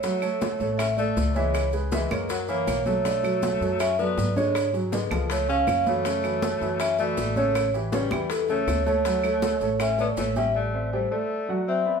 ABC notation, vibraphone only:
X:1
M:4/4
L:1/8
Q:1/4=160
K:D
V:1 name="Vibraphone"
c4 e d2 c- | c z B2 ^A c2 c- | c4 e d2 c- | c z B2 c ^e2 c- |
c4 e d2 c- | c z B2 A c2 c- | c4 e d c e | d2 =c d3 e2 |]